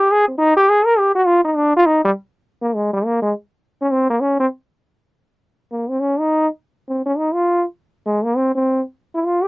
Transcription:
Already playing: G4
0.11 G#4
0.28 C4
0.38 D#4
0.57 G4
0.69 G#4
0.85 A#4
0.99 G4
1.15 F#4
1.27 F4
1.44 D#4
1.57 D4
1.77 F4
1.86 D#4
2.05 G3
2.62 A#3
2.75 G#3
2.93 G3
3.05 A#3
3.22 G#3
3.82 C#4
3.91 C4
4.10 A#3
4.21 C#4
4.40 C4
5.72 A#3
5.89 C4
6.00 C#4
6.19 D#4
6.89 C4
7.06 C#4
7.18 D#4
7.34 F4
8.06 G#3
8.24 A#3
8.37 C4
8.55 C4
9.15 E4
9.26 F4
9.43 G4

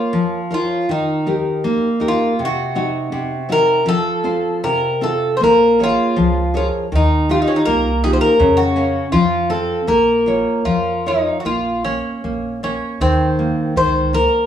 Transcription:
Already playing: A#3 F4 A#4 C5 C#5
0.13 F3
0.51 F4 A#4 C5 C#5
0.89 D#3 D#4
1.26 D#4 G4 A#4
1.64 A#3
2.00 D#4 G4 A#4
2.08 F4
2.39 C3
2.45 F#4
2.75 C4 D#4 F#4
3.12 C3
3.49 C4 D#4 F#4 A#4
3.86 F3 A4
4.24 C4 F4 C5
4.63 C3 A#4
5.01 C4 F4 A4
5.37 A#3 C5
5.42 A#1 A#4
5.79 G#4 A#4 C#5
5.83 F4
6.16 C#2 F3
6.54 F4 G#4 A#4 C#5
6.92 D#2 D#3 D#4
7.29 D#4 F4 G4
7.42 D#4
7.48 C#4
7.56 D#4
7.66 C2 A#3 A#4
8.04 D#4 F4 G4 G#4
8.13 C5
8.21 A#4
8.40 F2 C#3
8.57 F#4
8.76 C#4 A#4 F5
9.12 F2 F3 F4
9.50 C4 F4 A4
9.87 A#1 A#3 A#4
10.26 F4 A#4 C#5
10.65 F2 F3 F4
11.06 D#4 F4 A#4 C#5
11.40 F#4
11.45 A#1 A#3 F4
11.85 A#3 C#4
12.24 A#1 A#3
12.63 A#3 C#4
13.00 D#2 D#3 C4
13.39 A#3
13.76 C#2 D#3 C5
14.13 A#3 A#4

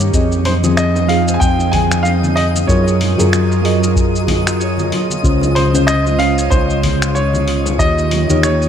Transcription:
Already playing: D#3 A#3 C#4 D#4 G4 A#4 C#5 D#5 F5
0.00 shaker
0.13 F2 F3 C4 D#4 G#4 D#5 D#6, kick, shaker
0.32 shaker
0.45 C5, open hi-hat, high bongo, low conga
0.63 F3 C4 G#4 D#5, high conga, shaker
0.77 D#5, finger snap, shaker
0.95 D#4, high bongo, shaker
1.08 F3 C4 G#4 F5, open hi-hat
1.12 F5
1.28 C5, shaker
1.34 G#5
1.40 F2 G5, kick, shaker
1.59 high bongo, shaker
1.72 G#5, kick, open hi-hat, high conga
1.91 D#4, finger snap, shaker
2.03 D#5 F5, high bongo, shaker
2.23 high conga, shaker
2.36 D#4 D#5, open hi-hat
2.55 high conga, shaker
2.67 F#2 F#3 F4 G#4 A#4 C#5, kick, high bongo, shaker
2.88 shaker
3.00 open hi-hat, low conga
3.17 F#2 F#3 F4 G#4 A#4, high bongo, high conga, shaker
3.33 finger snap, shaker
3.51 F4, shaker
3.62 F#3 F4 G#4 D#5, open hi-hat
3.83 A#4, high bongo, shaker
3.96 kick, shaker
4.15 shaker
4.27 kick, open hi-hat, high bongo, high conga
4.47 F4, finger snap, shaker
4.60 C#5, shaker
4.78 high conga, shaker
4.92 F4, open hi-hat, high bongo, low conga
5.10 high conga, shaker
5.23 C#2 C#3 G#3 C#4 F4 C5, kick, shaker
5.41 high bongo, shaker
5.55 C5, open hi-hat, low conga
5.73 C#3 C#4 F4 C5, high conga, shaker
5.87 D#5, finger snap, shaker
6.06 F4, high bongo, shaker
6.17 C#3 C#4 F4 F5, open hi-hat
6.21 D#5
6.38 C#5, shaker
6.50 C#2 C5, kick, high bongo, shaker
6.70 shaker
6.83 kick, open hi-hat, high conga
7.02 F4, finger snap, shaker
7.15 C#5 F5, high bongo, shaker
7.33 high conga, shaker
7.47 F4, open hi-hat
7.66 high bongo, high conga, shaker
7.78 D#2 D#3 A#3 D#4 G4 C#5 D#5, kick, shaker
7.98 shaker
8.11 open hi-hat, low conga
8.29 D#2 D#3 D#4 G4 A#4 C#5, high bongo, high conga, shaker
8.43 C#5, finger snap, shaker
8.61 D#4, shaker

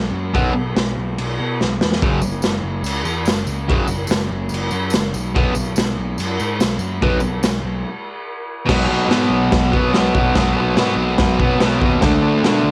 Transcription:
Already playing: B1
0.11 F#2
0.34 B1 B2 F#3 B3, kick, crash
0.53 B1
0.75 B1, snare, crash
0.97 B1
1.18 B1, crash
1.40 B2
1.61 B1, snare
1.81 E2, snare
1.92 snare
2.02 F#1 F#2 C#3 F#3, kick, crash
2.22 F#1, tambourine
2.42 F#1, snare, tambourine, crash
2.63 F#1
2.82 C#2, tambourine, crash
3.04 E2, tambourine
3.25 F#1, snare, tambourine, crash
3.46 C#2, tambourine
3.68 F#1 F#2 C#3 F#3, kick, crash
3.87 F#1, tambourine
4.07 F#1, snare, tambourine
4.11 crash
4.30 F#1
4.49 F#1, tambourine
4.54 crash
4.71 F#2, tambourine
4.90 F#1, snare, tambourine, crash
5.14 B1, tambourine
5.34 B1 B2 F#3 B3, kick, crash
5.55 B1, tambourine
5.76 B1, snare, tambourine, crash
5.97 B1
6.18 F#2, tambourine, crash
6.40 G#2, tambourine
6.59 B1, snare, tambourine, crash
6.78 F#2, tambourine
7.02 B1 B2 F#3 B3, kick, crash
7.20 B1, tambourine
7.41 B1, snare, tambourine, crash
7.63 B1
8.66 B1 B2 F#3, kick, snare, crash
8.72 B3
8.87 B1 B3
8.92 F#3
9.08 G#2 B2 F#3, snare, crash
9.12 B3
9.30 B1
9.51 B1, kick, snare, crash
9.72 B2 B3, kick
9.77 F#3
9.92 B1 B2 F#3, snare, crash
9.98 B3
10.14 B1 B3, kick
10.19 F#3
10.35 B1 B2 F#3, kick, snare, crash
10.40 B3
10.54 B1 B3
10.61 F#3
10.76 G#2 B2 F#3, snare, crash
10.81 B3
10.95 B1
11.18 B1, kick, snare, crash
11.39 B2 B3, kick
11.44 F#3
11.58 B1 B2, snare, crash
11.64 F#3 B3
11.80 D#2 B3, kick
11.86 F#3
12.01 D2 D3 A3, kick, snare, crash
12.05 D4
12.21 D2 D4
12.28 A3
12.42 B2 D3, snare, crash
12.47 A3 D4
12.63 D2

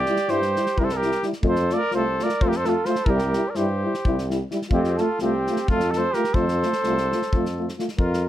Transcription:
Already playing: G4 D5
0.06 G3 E4, snare
0.16 snare
0.28 G2 G3 E4 G4 C5, snare
0.42 snare
0.56 G3 E4, snare
0.66 snare
0.78 C2 G3 E4 G4 A#4, kick
0.84 A4 C5
0.89 snare
0.93 G4 A#4
1.02 G3 E4, snare
1.12 snare
1.23 G3 E4, snare
1.33 snare
1.42 F2 A3 F4, kick
1.48 A4 C5
1.56 snare
1.70 A3 F4 D5, snare
1.78 A#4
1.91 C2 A3 F4 C5, snare
1.97 A4
2.20 A3 F4 D5, snare
2.24 A#4
2.29 snare
2.41 F2 A3 F4 A4 C5, kick
2.48 G4 A#4
2.52 snare
2.56 A4 C5
2.65 A3 F4 A4, snare
2.70 F4
2.85 A3 F4 C5, snare
2.91 A4
2.95 snare
3.06 C2 G3 E4 A#4, kick
3.10 G4
3.19 snare
3.33 G3 E4, snare
3.49 A#4 D5
3.55 G2 G3 E4 G4 C5, snare
3.84 G3 E4
3.94 snare
4.05 C2 G3 E4, kick
4.18 snare
4.30 G3 E4, snare
4.51 G3 E4, snare
4.62 snare
4.70 F2 A3 C4 F4, kick
4.74 G4
4.84 snare
4.97 A3 F4 A4, snare
5.02 F4
5.19 C2 A3 C4 F4 G4, snare
5.47 A3 F4, snare
5.56 snare
5.68 F2 A3 F4 A4, kick
5.80 snare
5.91 F4 A4, snare
5.96 A3 C5
6.12 A3 F4 G4 A#4, snare
6.24 snare
6.33 F2 A3 F4 A4 C5, kick
6.48 snare
6.62 A3 F4, snare
6.73 snare
6.83 C2 A3 F4, snare
6.98 snare
7.12 A3 F4, snare
7.22 snare
7.32 F2 A3 F4, kick
7.46 snare
7.58 A3 F4
7.69 snare
7.78 A3 F4, snare
7.88 snare
7.98 F2 F4 A#4, kick
8.14 snare
8.25 F4

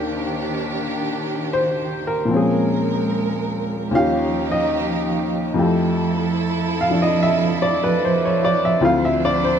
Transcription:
Already playing: D#2 D#3 D4 F4 G4 A#4 C5
1.53 C5
2.07 A#4
2.25 A#2 F3 G#3 A#4
2.31 C4 C#4
2.36 G#4
3.90 D#2 D#3 F3 C#4 D#4 G4
3.95 F4 G4 F5
4.52 D#5
5.54 F2 F3 A3 E4 A4
5.59 G4
6.81 F5
6.90 F3 D4 E4
7.02 D#5
7.23 E5
7.62 D5
7.84 B4
8.05 C5
8.25 C#5
8.45 D5
8.65 E5
8.78 D2 D3 C4 D4 E4 C5
8.82 F4 F5
9.05 E5
9.25 D5
9.44 C5

